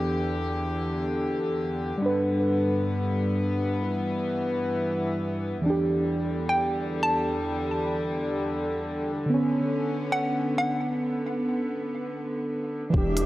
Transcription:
Already playing: string section E2 D3 G4, synth keys E3 D4 G4
1.98 synth keys G3
2.02 string section G2 B3, synth keys D4 B4
3.84 string section E3
5.62 synth keys E3
5.66 string section E2 D3 G3, synth keys D4
5.70 synth keys G4
6.49 synth pluck G5
7.03 synth pluck A5
9.26 synth keys D3 B3, string section B3 C#4
9.34 synth keys C#4
10.12 synth pluck F#5
10.58 synth pluck F#5
12.90 synth keys E3, synth texture D4 D5, string section D4 G4 E5, kick
12.94 detuned saw bass E1, synth keys D4 G4
13.17 open hi-hat

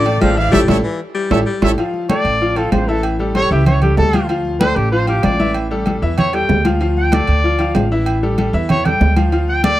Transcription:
Already playing: upright bass A1, trumpet section A4 D5
0.06 upright piano A3 A4 D5, high conga, low agogo
0.21 upright bass A1, baritone saxophone F3, upright piano A3 A4 D5, trumpet section D5 F5, high conga, low timbale, low agogo
0.36 upright piano E3 E4 E5, trumpet section D5 F5
0.52 upright bass A1, baritone saxophone G3, upright piano E4 G4 A4, trumpet section A4 C#5 E5, high conga, high timbale
0.68 upright bass A1, upright piano E4 G4 A4, trumpet section A4 C#5 E5, high conga, high timbale
0.84 baritone saxophone E3
1.15 baritone saxophone G3
1.31 upright bass A1, upright piano E4 G4 A4, trumpet section A4 C#5 E5, high conga, high timbale
1.46 baritone saxophone G3
1.62 upright bass A1, upright piano E4 G4 A4, trumpet section A4 C#5 E5, high conga, high timbale
1.78 upright piano F3 F4 F5, high conga, low agogo
1.94 high conga
2.09 upright piano A3 A4 D5, trumpet D5, high conga, low timbale, low agogo
2.25 upright bass A1, high conga, low agogo
2.41 upright piano F3 F4 F5, high conga
2.56 upright piano F3 F4 F5, trumpet A4, high conga, low agogo
2.72 upright bass A1, trumpet C5, high conga, low timbale, low agogo
2.88 upright piano E3 E4 E5, trumpet A4
3.03 high conga, low agogo
3.19 upright piano G3 G4 A4, high conga
3.35 upright piano G3 G4 A4, trumpet C#5, high conga, low timbale, low agogo
3.51 upright bass C#2, upright piano E3 E4 E5, trumpet G4, high conga
3.66 trumpet C#5, high conga, low conga, low agogo
3.82 upright piano G3 G4 A4, trumpet G4, high conga, low conga, low agogo
3.97 upright bass D2, trumpet A4, high conga, low timbale
4.13 upright piano F3 F4 F5, high conga, low agogo
4.29 upright piano F3 F4 F5, high conga, low agogo
4.45 high conga
4.60 upright piano A3 A4 D5, trumpet C5, high conga, low timbale, low agogo
4.76 upright bass A1, trumpet G4, high conga, low agogo
4.92 upright piano F3 F4 F5, trumpet C5, high conga
5.07 upright piano F3 F4 F5, trumpet G4, high conga, low agogo
5.23 upright bass A1, trumpet D5, high conga, low timbale, low agogo
5.39 upright piano E3 E4 E5, high conga
5.54 high conga, low agogo
5.71 upright piano G3 G4 A4, high conga
5.86 upright piano G3 G4 A4, high conga, low timbale, low agogo
6.02 upright bass E2, upright piano E3 E4 E5, high conga
6.18 trumpet C#5, high conga, low conga, low agogo
6.33 upright piano G3 G4 A4, trumpet G5, high conga, low agogo
6.49 upright bass D2, high conga, low timbale
6.65 upright piano F3 F4 F5, high conga, low agogo
6.81 upright piano F3 F4 F5, high conga, low agogo
6.97 trumpet G5, high conga
7.12 upright piano A3 A4 D5, trumpet D5, high conga, low timbale, low agogo
7.27 upright bass D2, high conga, low agogo
7.44 upright piano F3 F4 F5, high conga
7.59 upright piano F3 F4 F5, high conga, low agogo
7.75 upright bass A1, high conga, low timbale, low agogo
7.91 upright piano E3 E4 E5
8.06 high conga, low agogo
8.23 upright piano G3 G4 A4, high conga
8.38 upright piano G3 G4 A4, high conga, low timbale, low agogo
8.53 upright bass E2, upright piano E3 E4 E5, high conga
8.69 trumpet C#5, high conga, low conga, low agogo
8.85 upright piano G3 G4 A4, trumpet G5, high conga, low conga, low agogo
9.01 upright bass D2, high conga, low timbale
9.16 upright piano F3 F4 F5, high conga, low agogo
9.32 upright piano F3 F4 F5, high conga, low agogo
9.48 trumpet G5, high conga
9.63 upright piano A3 A4 D5, trumpet D5, high conga, low timbale, low agogo

